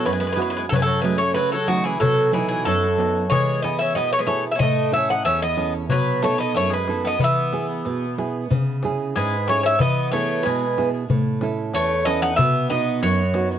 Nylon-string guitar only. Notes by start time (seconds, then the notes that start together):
Already playing: B3 E4 F#4
0.05 F#2
0.36 B3 E4 F#4
0.71 F#2
1.03 F#3 A3 C#4
1.34 C#3
1.67 F#3 A3 C#4
2.00 B2
2.31 F#3 B3 D#4
2.66 F#2
2.97 F#3 B3 D#4
3.31 E3
3.63 B3 E4 G#4
3.95 B2
4.27 B3 E4 G#4
4.61 A2
4.92 C#4 E4 A4
5.25 E2
5.57 C#4 E4 A4
5.90 B2
6.23 B3 D#4 A4
6.56 F#2
6.88 B3 D#4 A4
7.21 E3
7.53 B3 E4 G#4
7.86 B2
8.18 B3 E4 G#4
8.50 C#3
8.84 C#4 E4 G#4
9.16 G#2
9.49 C#4 E4 G#4
9.80 E3
10.13 B3 E4 G#4
10.46 B2
10.77 B3 E4 G#4
11.10 A2
11.42 C#4 E4 A4
11.74 E2
12.06 C#4 E4 A4
12.38 B2
12.70 B3 D#4 F#4
13.02 F#2
13.34 B3 D#4 F#4